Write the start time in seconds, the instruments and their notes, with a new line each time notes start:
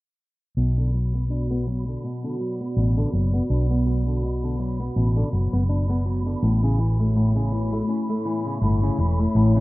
0.57 fingered electric bass B1, analog synth pad B2, nylon-string guitar B2, synth texture B5
0.70 analog synth pad B3
0.78 nylon-string guitar D3
0.87 analog synth pad F#4
0.94 nylon-string guitar F#3, cabasa
1.14 nylon-string guitar B3
1.30 nylon-string guitar D4
1.51 nylon-string guitar B3
1.67 nylon-string guitar F#3, cabasa
1.88 nylon-string guitar D3
1.98 analog synth pad D5
2.04 nylon-string guitar B2
2.24 nylon-string guitar D3
2.40 nylon-string guitar F#3, cabasa
2.61 nylon-string guitar B3, cabasa
2.77 fingered electric bass A1, nylon-string guitar B2
2.97 nylon-string guitar D3
3.13 fingered electric bass F#1, nylon-string guitar F#3, cabasa
3.34 nylon-string guitar B3, cabasa
3.50 fingered electric bass B1, nylon-string guitar D4
3.71 nylon-string guitar B3
3.86 nylon-string guitar F#3, cabasa
4.07 nylon-string guitar D3, cabasa
4.23 nylon-string guitar B2, cabasa
4.43 nylon-string guitar D3
4.59 nylon-string guitar F#3, cabasa
4.80 nylon-string guitar B3, cabasa
4.96 fingered electric bass A1, nylon-string guitar B2, cabasa
5.16 nylon-string guitar D3
5.32 fingered electric bass F#1, nylon-string guitar F#3, cabasa
5.53 fingered electric bass F#1, nylon-string guitar B3, cabasa
5.69 nylon-string guitar D4, cabasa
5.89 nylon-string guitar B3
6.05 nylon-string guitar F#3, cabasa
6.26 nylon-string guitar D3, cabasa
6.42 fingered electric bass A1, analog synth pad A2, nylon-string guitar A2, cabasa
6.54 analog synth pad A3
6.63 nylon-string guitar C#3
6.79 nylon-string guitar E3, cabasa
6.85 analog synth pad C#5
6.99 nylon-string guitar A3, cabasa
7.15 nylon-string guitar A2, analog synth pad E4, cabasa
7.36 nylon-string guitar C#3
7.52 nylon-string guitar E3, cabasa
7.72 nylon-string guitar A3, cabasa
7.89 nylon-string guitar C#4, cabasa
8.09 nylon-string guitar A3
8.25 nylon-string guitar E3, cabasa
8.46 nylon-string guitar C#3, cabasa
8.61 fingered electric bass G1, nylon-string guitar A2, cabasa
8.83 nylon-string guitar C#3
8.98 fingered electric bass E1, nylon-string guitar E3, cabasa
9.19 nylon-string guitar A3, cabasa
9.35 fingered electric bass A1, nylon-string guitar A2, cabasa
9.55 nylon-string guitar C#3